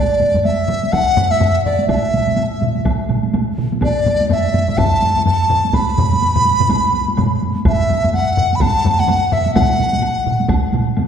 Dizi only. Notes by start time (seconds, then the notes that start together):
Already playing: D5
0.44 E5
0.92 F#5
1.31 E5
1.65 D5
1.89 E5
3.84 D5
4.32 E5
4.78 A5
5.26 A5
5.74 B5
7.68 E5
8.14 F#5
8.55 B5
8.62 A5
8.99 F#5
9.33 E5
9.54 F#5